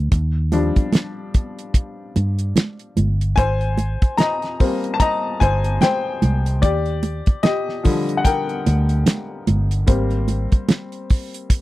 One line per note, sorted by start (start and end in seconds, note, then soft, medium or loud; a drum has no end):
0.12 0.70 D#2 loud
0.12 kick loud
0.12 closed hi-hat medium
0.12 muted conga soft
0.52 3.33 F3 soft
0.52 3.33 G3 soft
0.52 3.34 D4 medium
0.52 closed hi-hat medium
0.52 muted conga soft
0.76 muted fingered electric bass stroke soft
0.76 kick medium
0.76 closed hi-hat soft
0.93 snare medium
0.93 closed hi-hat medium
0.93 high conga medium
1.34 kick medium
1.34 closed hi-hat medium
1.59 closed hi-hat medium
1.74 kick medium
1.74 closed hi-hat medium
2.16 2.53 G2 medium
2.16 closed hi-hat medium
2.16 muted conga soft
2.39 closed hi-hat soft
2.56 snare loud
2.56 closed hi-hat medium
2.56 high conga medium
2.79 closed hi-hat soft
2.97 3.34 G1 medium
2.97 closed hi-hat medium
2.97 high conga medium
3.21 closed hi-hat soft
3.36 3.96 G#1 medium
3.36 4.15 C5 medium
3.36 4.20 G#5 medium
3.36 kick loud
3.36 closed hi-hat medium
3.36 muted conga soft
3.61 closed hi-hat soft
3.77 closed hi-hat medium
3.77 muted conga medium
4.02 muted fingered electric bass stroke soft
4.02 kick medium
4.02 closed hi-hat soft
4.17 4.91 D#5 medium
4.17 4.96 A#5 medium
4.17 snare medium
4.17 closed hi-hat medium
4.17 high conga medium
4.42 snare soft
4.42 closed hi-hat soft
4.60 5.16 G3 soft
4.60 5.16 A#3 soft
4.60 5.17 C4 medium
4.60 kick medium
4.60 open hi-hat medium
4.84 closed hi-hat soft
4.94 5.00 A5 medium
5.00 5.39 D#5 medium
5.00 5.42 A#5 loud
5.00 kick medium
5.00 closed hi-hat medium
5.00 muted conga soft
5.40 5.78 G1 medium
5.40 5.79 C5 medium
5.40 5.82 G#5 medium
5.40 kick medium
5.40 closed hi-hat medium
5.40 muted conga soft
5.64 closed hi-hat medium
5.81 6.60 C5 medium
5.81 6.65 G5 medium
5.81 snare loud
5.81 closed hi-hat medium
5.81 high conga medium
6.22 6.63 C2 medium
6.22 closed hi-hat medium
6.22 high conga medium
6.46 closed hi-hat medium
6.62 7.21 D#2 loud
6.62 7.41 G4 medium
6.62 7.46 D5 medium
6.62 kick loud
6.62 closed hi-hat medium
6.62 muted conga soft
6.86 closed hi-hat soft
7.03 closed hi-hat medium
7.03 muted conga medium
7.26 muted fingered electric bass stroke soft
7.26 kick medium
7.26 closed hi-hat soft
7.43 8.16 G4 medium
7.43 8.21 D#5 medium
7.43 snare loud
7.43 closed hi-hat medium
7.43 high conga medium
7.69 snare soft
7.83 8.41 D3 medium
7.83 8.41 F3 medium
7.83 8.41 G3 medium
7.83 kick medium
7.83 open hi-hat medium
8.09 closed hi-hat medium
8.17 8.24 F#5 medium
8.24 9.44 A#4 medium
8.24 9.43 G5 medium
8.24 kick medium
8.24 closed hi-hat medium
8.24 muted conga soft
8.49 closed hi-hat soft
8.66 9.03 D2 medium
8.66 closed hi-hat medium
8.66 muted conga soft
8.89 closed hi-hat soft
9.06 snare loud
9.06 closed hi-hat medium
9.06 high conga medium
9.47 9.84 G1 medium
9.47 closed hi-hat medium
9.47 high conga medium
9.71 closed hi-hat medium
9.87 10.46 G#1 loud
9.87 10.44 G3 medium
9.87 10.44 A#3 soft
9.87 10.44 C4 medium
9.87 kick loud
9.87 closed hi-hat medium
9.87 muted conga soft
10.11 closed hi-hat soft
10.28 closed hi-hat medium
10.28 muted conga medium
10.52 muted fingered electric bass stroke soft
10.52 kick medium
10.52 closed hi-hat soft
10.69 snare loud
10.69 closed hi-hat medium
10.69 high conga medium
10.92 closed hi-hat soft
11.10 kick medium
11.10 open hi-hat medium
11.34 closed hi-hat medium
11.50 kick medium
11.50 closed hi-hat medium